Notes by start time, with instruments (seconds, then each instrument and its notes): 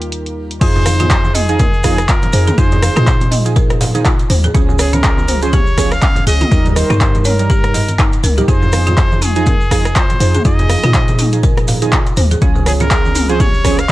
Already playing: 808-style bass D#2, analog synth pad D#3 A#3 F4, synth keys G3 D#4 A#4
0.02 closed hi-hat
0.12 closed hi-hat
0.26 closed hi-hat
0.51 closed hi-hat
0.61 808-style bass F2, synth keys F3 D#4 G#4, marimba F4, muted trumpet C5, kick, closed hi-hat, crash, maracas
0.75 low conga, maracas
0.86 marimba F5, cross-stick, open hi-hat, muted conga, high conga, maracas
0.99 marimba F4, closed hi-hat, high conga, low conga, maracas
1.10 marimba C5, kick, clap, closed hi-hat, maracas
1.24 muted conga, high conga, maracas
1.35 muted trumpet G#4, marimba D#5, open hi-hat, mid tom, maracas
1.49 synth keys F3 D#4 G#4, closed hi-hat, maracas
1.59 marimba A#4, kick, closed hi-hat, mid tom, muted conga, low conga, maracas
1.74 maracas
1.83 synth keys F3 D#4 G#4, marimba F5, kick, cross-stick, open hi-hat, high conga, maracas
1.98 cross-stick, closed hi-hat, maracas
2.08 marimba F4, muted trumpet A#4, kick, clap, closed hi-hat, muted conga, maracas
2.22 closed hi-hat, high conga, low conga, maracas
2.33 808-style bass F2, synth keys F3 D#4 G#4, marimba C5, open hi-hat, maracas
2.47 marimba G#4, closed hi-hat, mid tom, muted conga, high conga, maracas
2.58 808-style bass F2, synth keys F3 D#4 G#4, marimba F4, muted trumpet C5, kick, closed hi-hat, maracas
2.71 closed hi-hat, low conga, maracas
2.83 marimba F5, cross-stick, open hi-hat, muted conga, high conga, maracas
2.96 808-style bass A#2, marimba F4, cross-stick, closed hi-hat, high conga, low conga, maracas
3.07 marimba C5, kick, clap, closed hi-hat, maracas
3.21 closed hi-hat, muted conga, high conga, maracas
3.31 marimba D#5, open hi-hat, mid tom, maracas
3.45 synth keys F3 D#4 G#4, closed hi-hat, maracas
3.56 marimba A#4, kick, closed hi-hat, muted conga, maracas
3.70 cross-stick, closed hi-hat, maracas
3.81 marimba F5, open hi-hat, low conga, maracas
3.95 synth keys F3 D#4 G#4, closed hi-hat, high conga, maracas
4.05 marimba F4, kick, clap, closed hi-hat, maracas
4.19 closed hi-hat, maracas
4.30 808-style bass D#2, marimba C5, open hi-hat, mid tom, high conga, maracas
4.44 marimba G#4, closed hi-hat, muted conga, low conga, maracas
4.54 808-style bass C#2, synth keys F3 C#4 G#4, marimba C#4, kick, closed hi-hat, maracas
4.69 low conga, maracas
4.79 muted trumpet G#4, marimba C#5, cross-stick, open hi-hat, muted conga, high conga, maracas
4.93 marimba C#4, muted trumpet A#4, closed hi-hat, high conga, low conga, maracas
5.04 marimba G#4, kick, clap, closed hi-hat, maracas
5.18 muted conga, high conga, maracas
5.28 marimba C5, open hi-hat, mid tom, maracas
5.42 synth keys F3 C#4 G#4, muted trumpet C5, closed hi-hat, maracas
5.53 marimba G4, muted trumpet C#5, kick, closed hi-hat, mid tom, muted conga, low conga, maracas
5.67 maracas
5.77 synth keys F3 C#4 G#4, marimba C#5, kick, cross-stick, open hi-hat, high conga, maracas
5.92 muted trumpet F5, cross-stick, closed hi-hat, maracas
6.02 marimba C#4, kick, clap, closed hi-hat, muted conga, maracas
6.16 closed hi-hat, high conga, low conga, maracas
6.27 808-style bass C#2, synth keys F3 C#4 G#4, marimba G#4, muted trumpet D#5, open hi-hat, maracas
6.41 marimba F4, closed hi-hat, mid tom, muted conga, high conga, maracas
6.51 808-style bass D#2, synth keys G3 D#4 A#4, marimba D#4, kick, closed hi-hat, maracas
6.66 closed hi-hat, low conga, maracas
6.70 muted trumpet D#5
6.76 muted trumpet C5, marimba D#5, cross-stick, open hi-hat, muted conga, high conga, maracas
6.90 808-style bass G2, marimba D#4, cross-stick, closed hi-hat, high conga, low conga, maracas
7.00 marimba A#4, kick, clap, closed hi-hat, maracas
7.15 closed hi-hat, muted conga, high conga, maracas
7.19 muted trumpet C5
7.25 muted trumpet A#4, marimba C#5, open hi-hat, mid tom, maracas
7.39 synth keys G3 D#4 A#4, closed hi-hat, maracas
7.50 marimba G4, kick, closed hi-hat, muted conga, maracas
7.64 cross-stick, closed hi-hat, maracas
7.74 marimba D#5, open hi-hat, low conga, maracas
7.88 closed hi-hat, high conga, maracas
7.98 marimba D#4, kick, clap, closed hi-hat, maracas
8.12 closed hi-hat, maracas
8.24 808-style bass C#2, marimba A#4, open hi-hat, mid tom, high conga, maracas
8.38 synth keys G3 D#4 G4, marimba G4, closed hi-hat, muted conga, low conga, maracas
8.48 808-style bass F2, synth keys F3 D#4 G#4, marimba F4, muted trumpet C5, kick, closed hi-hat, maracas
8.62 low conga, maracas
8.72 marimba F5, cross-stick, open hi-hat, muted conga, high conga, maracas
8.86 marimba F4, closed hi-hat, high conga, low conga, maracas
8.97 marimba C5, kick, clap, closed hi-hat, maracas
9.11 muted conga, high conga, maracas
9.22 marimba D#4, muted trumpet G#4, open hi-hat, mid tom, maracas
9.35 synth keys F3 D#4 G#4, closed hi-hat, maracas
9.46 marimba A#4, kick, closed hi-hat, mid tom, muted conga, low conga, maracas
9.61 maracas
9.71 synth keys F3 D#4 G#4, marimba F5, kick, cross-stick, open hi-hat, high conga, maracas
9.85 cross-stick, closed hi-hat, maracas
9.96 marimba F4, muted trumpet C5, kick, clap, closed hi-hat, muted conga, maracas
10.10 closed hi-hat, high conga, low conga, maracas
10.20 808-style bass F2, synth keys F3 D#4 G#4, marimba C5, open hi-hat, maracas
10.35 marimba G#4, closed hi-hat, mid tom, muted conga, high conga, maracas
10.45 808-style bass F2, synth keys F3 D#4 G#4, marimba F4, muted trumpet D#5, kick, closed hi-hat, maracas
10.59 closed hi-hat, low conga, maracas
10.70 marimba F5, cross-stick, open hi-hat, muted conga, high conga, maracas
10.84 808-style bass A#2, marimba F4, cross-stick, closed hi-hat, high conga, low conga, maracas
10.94 marimba C5, kick, clap, closed hi-hat, maracas
11.08 closed hi-hat, muted conga, high conga, maracas
11.19 marimba D#4, open hi-hat, mid tom, maracas
11.32 synth keys F3 D#4 G#4, closed hi-hat, maracas
11.43 marimba A#4, kick, closed hi-hat, muted conga, maracas
11.57 cross-stick, closed hi-hat, maracas
11.68 marimba F5, open hi-hat, low conga, maracas
11.82 synth keys F3 D#4 G#4, closed hi-hat, high conga, maracas
11.92 marimba F4, kick, clap, closed hi-hat, muted conga, maracas
12.07 closed hi-hat, maracas
12.17 808-style bass D#2, marimba C5, open hi-hat, mid tom, high conga, maracas
12.31 marimba G#4, closed hi-hat, muted conga, low conga, maracas
12.41 808-style bass C#2, synth keys F3 C#4 G#4, marimba C#4, kick, closed hi-hat, maracas
12.55 low conga, maracas
12.66 muted trumpet G#4, marimba C#5, cross-stick, open hi-hat, muted conga, high conga, maracas
12.80 marimba C#4, muted trumpet A#4, closed hi-hat, high conga, low conga, maracas
12.91 marimba G#4, kick, clap, closed hi-hat, maracas
13.05 muted conga, high conga, maracas
13.15 marimba C4, open hi-hat, mid tom, maracas
13.29 synth keys F3 C#4 G#4, muted trumpet C5, closed hi-hat, maracas
13.40 marimba G4, muted trumpet C#5, kick, closed hi-hat, mid tom, muted conga, low conga, maracas
13.54 maracas
13.64 synth keys F3 C#4 G#4, marimba C#5, kick, cross-stick, open hi-hat, high conga, maracas
13.78 muted trumpet F5, cross-stick, closed hi-hat, maracas